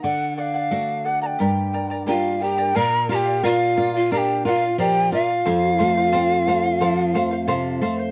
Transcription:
0.02 nylon-string guitar D3, charango A4 D5 F#5, quena F#5
0.37 charango A4 D5 F#5, quena F5 F#5
0.54 charango D5 F#5
0.71 nylon-string guitar A3 D4 F#4, charango A4 D5
1.05 charango A4 D5 F#5, quena F#5
1.22 charango D5 F#5, quena A#5
1.26 quena G5
1.39 nylon-string guitar G2, charango G4 A#4 D5 G5 A#5
1.73 charango A#4 D5 G5 A#5
1.90 charango A#4 D5 A#5
2.06 nylon-string guitar A#3 D4 G4, pan flute F4, charango G4 A#4 D5 G5 A#5, quena F5
2.40 pan flute G4, charango A#4 D5 G5 A#5, quena G5
2.58 charango A#4 D5 A#5
2.74 nylon-string guitar A#2, charango A#4 D5 F5, pan flute A#4, quena A#5
3.09 nylon-string guitar F4, pan flute G4, charango A#4 D5 F5, quena A#5
3.15 quena G5
3.25 charango D5 F5
3.43 pan flute F4, charango A#4 D5 F5, nylon-string guitar A#4, quena F5
3.76 nylon-string guitar F4, charango A#4 D5 F5
3.94 pan flute F4, charango D5 F5, quena F5
4.11 nylon-string guitar D4, pan flute G4, charango A#4 D5 F5, quena A#5
4.18 quena G5
4.45 nylon-string guitar F4, pan flute F4, charango A#4 D5 F5, quena F#5
4.50 quena F5
4.62 charango D5 F5
4.78 nylon-string guitar F3, pan flute G4, charango A#4 D5 F5, quena G5
5.12 nylon-string guitar F4, pan flute F4, charango A#4 D5 F5, quena F5
5.28 charango D5 F5
5.45 nylon-string guitar F2, charango A4 C5 F5
5.78 nylon-string guitar A3, charango A4 C5 F5
5.96 charango C5 F5
6.12 nylon-string guitar C4, charango A4 C5 F5
6.47 nylon-string guitar A3, charango A4 C5 F5
6.63 charango C5 F5
6.81 nylon-string guitar F3, charango A4 C5 F5
7.14 nylon-string guitar A3, charango A4 C5 F5
7.31 charango C5 F5
7.48 nylon-string guitar C3, charango A4 C5 F5
7.81 nylon-string guitar A3, charango A4 C5 F5
7.98 charango C5 F5

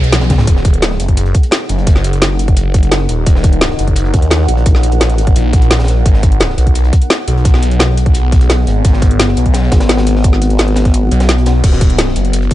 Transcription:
Already playing: detuned saw bass B1, ambient pad B3 G#4 F#5, noise sweep
0.04 closed hi-hat
0.12 snare, closed hi-hat, high tom
0.21 snare, closed hi-hat, high tom
0.30 kick, snare, closed hi-hat, mid tom
0.38 snare, closed hi-hat, mid tom
0.47 detuned saw bass D#1, ambient pad D#4 A#4 F#5, kick, closed hi-hat
0.56 snare
0.65 kick, closed hi-hat
0.74 closed hi-hat
0.82 snare, closed hi-hat
0.91 snare
1.00 detuned saw bass F#1, closed hi-hat
1.08 kick, closed hi-hat
1.17 closed hi-hat
1.26 closed hi-hat
1.35 kick, closed hi-hat
1.43 closed hi-hat
1.51 snare, closed hi-hat
1.69 detuned saw bass F#1, closed hi-hat
1.78 closed hi-hat
1.87 kick, closed hi-hat
1.95 snare
2.04 closed hi-hat
2.13 closed hi-hat
2.22 snare, closed hi-hat
2.39 closed hi-hat
2.48 kick, closed hi-hat
2.57 closed hi-hat
2.74 kick, closed hi-hat
2.83 closed hi-hat
2.91 snare, closed hi-hat
3.09 detuned saw bass D#1, closed hi-hat
3.26 detuned saw bass D#1, kick, closed hi-hat
3.36 snare
3.44 kick, closed hi-hat
3.53 closed hi-hat
3.61 snare, closed hi-hat
3.70 snare
3.79 detuned saw bass F#1, closed hi-hat
3.88 kick, closed hi-hat
3.96 closed hi-hat
4.05 closed hi-hat
4.14 wobble bass D#2, kick, closed hi-hat
4.22 closed hi-hat
4.31 snare, closed hi-hat
4.48 wobble bass A#1, closed hi-hat
4.58 closed hi-hat
4.66 kick, closed hi-hat
4.75 snare
4.83 closed hi-hat
4.92 closed hi-hat
5.01 snare, closed hi-hat
5.10 wobble bass A1, closed hi-hat
5.18 closed hi-hat
5.27 kick, closed hi-hat
5.36 detuned saw bass A#1, closed hi-hat
5.53 kick, closed hi-hat
5.62 closed hi-hat
5.71 snare, closed hi-hat
5.79 snare, closed hi-hat
5.84 snare, closed hi-hat
5.88 closed hi-hat
6.05 detuned saw bass G#1, ambient pad B3 G#4, kick, closed hi-hat
6.14 snare
6.23 kick, closed hi-hat
6.32 closed hi-hat
6.40 snare, closed hi-hat
6.50 snare
6.58 detuned saw bass B1, closed hi-hat
6.67 kick, closed hi-hat
6.75 closed hi-hat
6.84 closed hi-hat
6.93 kick, closed hi-hat
7.02 closed hi-hat
7.10 snare, closed hi-hat
7.28 detuned saw bass B1, closed hi-hat
7.37 closed hi-hat
7.45 kick, closed hi-hat
7.54 snare
7.63 closed hi-hat
7.71 closed hi-hat
7.79 snare, closed hi-hat
7.97 closed hi-hat
8.06 kick, closed hi-hat
8.14 closed hi-hat
8.32 kick, closed hi-hat
8.41 closed hi-hat
8.50 snare, closed hi-hat
8.67 detuned saw bass G#1, closed hi-hat
8.84 detuned saw bass G#1, ambient pad F#4, kick, closed hi-hat
8.93 snare
9.02 kick, closed hi-hat
9.11 closed hi-hat
9.20 snare, closed hi-hat
9.28 snare
9.37 detuned saw bass B1, closed hi-hat
9.46 kick, closed hi-hat
9.54 snare, closed hi-hat
9.63 snare
9.72 wobble bass G#1, kick, snare, closed hi-hat
9.80 snare, closed hi-hat
9.89 snare, closed hi-hat
9.97 snare, closed hi-hat
10.07 closed hi-hat
10.16 snare
10.23 kick, closed hi-hat
10.33 snare
10.42 closed hi-hat
10.50 closed hi-hat
10.58 snare, closed hi-hat
10.68 closed hi-hat
10.76 snare, closed hi-hat
10.85 kick, snare, closed hi-hat
10.94 closed hi-hat
11.11 detuned saw bass B1, closed hi-hat
11.20 snare, closed hi-hat
11.29 snare, closed hi-hat
11.38 closed hi-hat
11.46 snare, closed hi-hat
11.64 detuned saw bass D#1, ambient pad D#4 A#4 F#5, kick, closed hi-hat, crash
11.73 snare
11.81 kick, closed hi-hat
11.90 closed hi-hat
11.98 snare, closed hi-hat
12.09 snare
12.16 detuned saw bass F#1, closed hi-hat
12.25 closed hi-hat
12.33 closed hi-hat
12.42 closed hi-hat
12.51 kick, closed hi-hat

